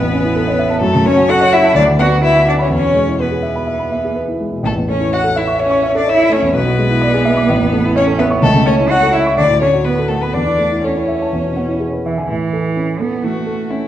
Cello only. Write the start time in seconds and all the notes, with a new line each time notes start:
Already playing: B3
0.83 A3
1.07 C#4
1.31 F#4
1.53 E4
1.77 D4
2.00 F#4
2.24 E4
2.48 D4
2.61 C#4
2.73 C#4
3.21 B3
4.64 A3
4.89 C#4
5.13 F#4
5.37 E4
5.61 C#4
5.96 D4
6.10 E4
6.33 C#4
6.56 B3
7.95 C#4
8.19 B3
8.42 A3
8.66 C#4
8.89 F#4
9.15 E4
9.37 D4
9.62 C#4
9.85 B3
10.10 A3
10.23 B3
10.34 D4
10.84 C#4
12.05 E3
12.18 D3
12.28 E3
13.00 B3
13.23 A3